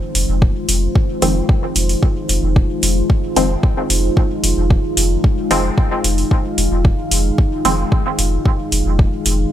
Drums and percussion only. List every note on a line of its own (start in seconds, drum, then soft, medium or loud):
0.15 open hi-hat medium
0.42 kick loud
0.69 open hi-hat medium
0.95 kick loud
1.22 open hi-hat medium
1.49 kick loud
1.76 open hi-hat medium
1.89 open hi-hat soft
2.03 kick loud
2.29 open hi-hat medium
2.56 kick loud
2.83 open hi-hat medium
3.10 kick loud
3.36 open hi-hat medium
3.63 kick loud
3.90 open hi-hat medium
4.17 kick loud
4.44 open hi-hat medium
4.70 kick loud
4.97 open hi-hat medium
5.24 kick loud
5.51 open hi-hat medium
5.78 kick loud
6.04 open hi-hat medium
6.18 open hi-hat soft
6.31 kick loud
6.58 open hi-hat medium
6.85 kick loud
7.11 open hi-hat medium
7.38 kick loud
7.65 open hi-hat medium
7.92 kick loud
8.19 open hi-hat medium
8.45 kick loud
8.72 open hi-hat medium
8.99 kick loud
9.26 open hi-hat medium